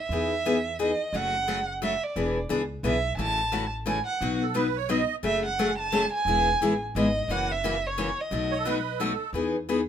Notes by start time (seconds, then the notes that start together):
0.00 E5
0.09 E2 E3 B3 D#4
0.13 G#4
0.45 E3 B3 D#4 G#4
0.79 E3 B3 D#4 G#4 D#5
1.13 F#1 C#3 F#3 A3 C#4 F#4 F#5
1.48 C#3 F#3 A3 C#4 F#4
1.82 C#3 F#3 A3 C#4 F#4 E5
2.04 D5
2.16 E1 E3 B3 D4 G#4
2.49 C#2 E3 B3 D4 G#4
2.83 B1 E3 B3 D4 G#4 E5
3.17 A1 C#3 E3 A3 C#4 F#4 A5
3.52 C#3 E3 A3 C#4 F#4
3.86 C#3 E3 A3 C#4 F#4 G#5
4.07 F#5
4.21 B1 B2 F#3 B3 D#4 F#4
4.42 A4
4.54 B2 F#3 B3 D#4 F#4 B4
4.76 C#5
4.89 B2 F#3 B3 D#4 F#4 D#5
5.23 F#1 C#3 F#3 A3 C#4 G#4 E5
5.46 F#5
5.59 C#3 F#3 A3 C#4 G#4
5.79 A5
5.92 C#3 F#3 A3 C#4 G#4
6.13 G#5
6.25 E1 E3 G#3 B3 E4 G#4
6.61 A1 E3 G#3 B3 E4 G#4
6.95 G#1 E3 G#3 B3 E4 G#4 D#5
7.28 F#1 C#3 E3 A#3 C#4 F#4 F#5
7.52 E5
7.64 C#3 E3 A#3 C#4 F#4
7.87 C#5
7.98 C#3 E3 A#3 C#4 F#4
8.21 D#5
8.31 B1 B2 F#3 A3 D#4 F#4
8.51 C#5
8.59 A4
8.65 B2 F#3 A3 D#4 F#4 B4
8.98 B2 F#3 A3 D#4 F#4 A4
9.33 E2 E3 B3 D#4 G#4
9.69 E3 B3 D#4 G#4